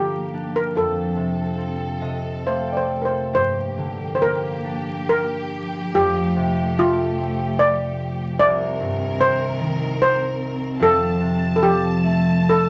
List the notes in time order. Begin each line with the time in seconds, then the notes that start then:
Already playing: G2 D3 F3 A#3 D4 G4
0.34 D4
0.56 A#4
0.75 F2 C4 A4
1.16 C3
1.58 C4
2.01 C3 D#5
2.46 A3 C5 F5
2.68 G5
2.73 D5
2.77 C5
2.88 C4
3.02 A#4 C5
3.33 G2 F3 A#3 G4 C5
3.78 D3
4.15 C5
4.22 A#3 A#4
4.64 D4
5.09 A#4
5.94 F2 A3 G4
6.36 C3
6.77 A3 F4
7.18 C4
7.59 D5
8.39 C2 D#3 C4 A#4 D5
8.80 G2
9.19 C3 C5
9.60 D#3
10.02 C5
10.79 F2 F3 A4 A5
11.20 C3
11.56 A4
11.61 F3 G4
12.03 A3
12.49 A4